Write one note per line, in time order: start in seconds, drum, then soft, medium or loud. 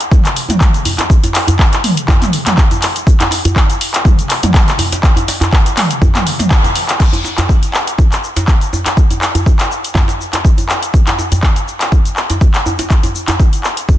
0.01 closed hi-hat medium
0.01 shaker medium
0.12 kick loud
0.12 mid tom medium
0.12 djembe tone medium
0.12 shaker medium
0.25 clap medium
0.25 closed hi-hat soft
0.25 shaker loud
0.36 open hi-hat medium
0.36 shaker medium
0.49 closed hi-hat medium
0.49 mid tom medium
0.49 djembe slap medium
0.49 djembe tone medium
0.49 shaker medium
0.61 kick loud
0.61 clap loud
0.61 mid tom loud
0.61 shaker loud
0.74 closed hi-hat soft
0.74 shaker medium
0.85 open hi-hat medium
0.85 djembe tone medium
0.85 shaker loud
0.98 clap medium
0.98 closed hi-hat medium
0.98 djembe slap medium
0.98 shaker medium
1.10 kick loud
1.10 shaker medium
1.24 closed hi-hat soft
1.24 djembe tone loud
1.24 shaker medium
1.35 clap medium
1.35 open hi-hat medium
1.35 shaker medium
1.47 closed hi-hat medium
1.47 djembe tone medium
1.47 djembe bass medium
1.47 shaker medium
1.59 kick loud
1.59 clap loud
1.59 shaker medium
1.73 clap medium
1.73 closed hi-hat soft
1.73 shaker medium
1.84 mid tom medium
1.84 open hi-hat loud
1.84 shaker medium
1.97 closed hi-hat medium
1.97 shaker medium
2.08 kick loud
2.08 clap medium
2.08 djembe bass medium
2.08 shaker medium
2.22 clap soft
2.22 closed hi-hat soft
2.22 mid tom loud
2.22 djembe slap medium
2.22 shaker medium
2.33 open hi-hat medium
2.33 shaker soft
2.46 clap medium
2.46 closed hi-hat medium
2.46 mid tom medium
2.46 djembe slap medium
2.46 shaker medium
2.58 kick loud
2.58 clap loud
2.58 shaker medium
2.71 closed hi-hat soft
2.71 djembe tone medium
2.71 shaker medium
2.82 clap medium
2.82 open hi-hat loud
2.82 shaker loud
2.96 closed hi-hat medium
2.96 shaker medium
3.07 kick loud
3.07 shaker medium
3.20 clap medium
3.20 closed hi-hat medium
3.20 djembe tone loud
3.20 shaker medium
3.31 open hi-hat loud
3.31 djembe slap medium
3.31 shaker medium
3.45 closed hi-hat medium
3.45 djembe tone medium
3.45 djembe bass loud
3.45 shaker medium
3.56 kick loud
3.56 clap loud
3.56 shaker medium
3.70 closed hi-hat medium
3.70 shaker medium
3.81 open hi-hat loud
3.81 shaker medium
3.94 clap medium
3.94 closed hi-hat medium
3.94 shaker soft
4.05 kick loud
4.05 mid tom medium
4.05 djembe tone medium
4.05 shaker medium
4.19 closed hi-hat soft
4.19 shaker medium
4.30 clap medium
4.30 open hi-hat medium
4.30 shaker soft
4.43 closed hi-hat medium
4.43 mid tom medium
4.43 djembe slap medium
4.43 djembe tone medium
4.43 shaker medium
4.54 kick loud
4.54 clap loud
4.54 mid tom medium
4.54 shaker loud
4.68 clap medium
4.68 closed hi-hat soft
4.68 shaker medium
4.79 open hi-hat loud
4.79 djembe tone medium
4.79 shaker medium
4.92 closed hi-hat medium
4.92 djembe slap medium
4.92 shaker medium
5.03 kick loud
5.03 clap medium
5.03 shaker medium
5.16 closed hi-hat soft
5.16 djembe tone loud
5.16 shaker medium
5.28 open hi-hat loud
5.28 djembe slap medium
5.28 shaker loud
5.41 clap medium
5.41 closed hi-hat medium
5.41 djembe tone medium
5.41 djembe bass medium
5.41 shaker medium
5.53 kick loud
5.53 clap loud
5.53 shaker medium
5.66 closed hi-hat soft
5.66 shaker medium
5.77 clap loud
5.77 mid tom medium
5.77 open hi-hat loud
5.77 shaker medium
5.91 closed hi-hat medium
5.91 shaker medium
6.02 kick loud
6.02 djembe bass loud
6.02 shaker medium
6.15 clap medium
6.15 closed hi-hat soft
6.15 mid tom medium
6.15 djembe slap medium
6.15 shaker medium
6.27 open hi-hat loud
6.27 shaker soft
6.39 closed hi-hat medium
6.39 mid tom medium
6.39 djembe slap medium
6.39 shaker medium
6.51 kick loud
6.51 clap loud
6.51 shaker loud
6.64 closed hi-hat soft
6.64 djembe tone medium
6.64 shaker medium
6.75 open hi-hat loud
6.75 shaker medium
6.89 clap medium
6.89 closed hi-hat medium
6.89 shaker medium
7.00 kick loud
7.00 clap medium
7.00 crash medium
7.00 shaker medium
7.13 closed hi-hat soft
7.13 djembe tone loud
7.13 shaker medium
7.25 djembe slap medium
7.25 shaker loud
7.38 clap medium
7.38 closed hi-hat medium
7.38 djembe tone medium
7.38 djembe bass loud
7.38 shaker medium
7.49 kick loud
7.49 shaker medium
7.63 closed hi-hat soft
7.63 shaker medium
7.74 clap loud
7.74 shaker medium
7.87 closed hi-hat medium
7.87 shaker medium
7.98 kick loud
7.98 djembe tone medium
7.98 shaker medium
8.12 clap medium
8.12 closed hi-hat soft
8.12 shaker medium
8.24 shaker medium
8.36 closed hi-hat medium
8.36 djembe slap medium
8.36 djembe tone medium
8.36 shaker medium
8.48 kick loud
8.48 clap loud
8.48 shaker medium
8.61 closed hi-hat soft
8.61 shaker medium
8.73 djembe tone medium
8.73 shaker medium
8.86 clap medium
8.86 closed hi-hat medium
8.86 djembe slap medium
8.86 shaker medium
8.97 kick loud
8.97 shaker medium
9.10 closed hi-hat soft
9.10 djembe tone medium
9.10 shaker medium
9.22 clap loud
9.22 shaker loud
9.35 closed hi-hat medium
9.35 djembe tone medium
9.35 djembe bass medium
9.35 shaker medium
9.46 kick loud
9.46 shaker medium
9.60 clap medium
9.60 closed hi-hat soft
9.60 shaker medium
9.72 shaker medium
9.84 closed hi-hat medium
9.84 shaker medium
9.95 kick loud
9.95 clap loud
9.95 djembe bass loud
9.95 shaker medium
10.08 closed hi-hat soft
10.08 djembe slap medium
10.08 shaker medium
10.21 shaker medium
10.33 clap medium
10.33 closed hi-hat medium
10.33 djembe slap medium
10.33 shaker medium
10.45 kick loud
10.45 shaker loud
10.58 closed hi-hat soft
10.58 djembe tone medium
10.58 shaker medium
10.69 clap medium
10.69 shaker loud
10.83 closed hi-hat medium
10.83 shaker medium
10.94 kick loud
10.94 shaker medium
11.07 clap medium
11.07 closed hi-hat soft
11.07 djembe tone medium
11.07 shaker medium
11.19 djembe slap medium
11.19 shaker loud
11.32 closed hi-hat medium
11.32 djembe tone medium
11.32 djembe bass medium
11.32 shaker loud
11.43 kick loud
11.43 clap loud
11.43 shaker medium
11.56 closed hi-hat soft
11.56 shaker medium
11.68 shaker medium
11.81 clap medium
11.81 closed hi-hat medium
11.81 shaker medium
11.92 kick loud
11.92 djembe tone medium
11.92 shaker medium
12.05 closed hi-hat soft
12.05 shaker loud
12.16 clap medium
12.16 shaker medium
12.30 closed hi-hat medium
12.30 djembe slap medium
12.30 djembe tone medium
12.30 shaker medium
12.41 kick loud
12.41 shaker loud
12.54 clap medium
12.54 closed hi-hat soft
12.54 shaker medium
12.66 djembe tone loud
12.66 shaker loud
12.79 closed hi-hat medium
12.79 djembe slap medium
12.79 shaker medium
12.90 kick loud
12.90 clap medium
12.90 shaker loud
13.03 closed hi-hat soft
13.03 djembe tone loud
13.03 shaker medium
13.15 shaker loud
13.28 clap medium
13.28 closed hi-hat medium
13.28 djembe tone medium
13.28 djembe bass medium
13.28 shaker loud
13.40 kick loud
13.40 shaker medium
13.53 closed hi-hat soft
13.53 shaker medium
13.64 clap medium
13.64 shaker medium
13.77 closed hi-hat medium
13.77 shaker medium
13.89 kick loud
13.89 djembe bass medium
13.89 shaker medium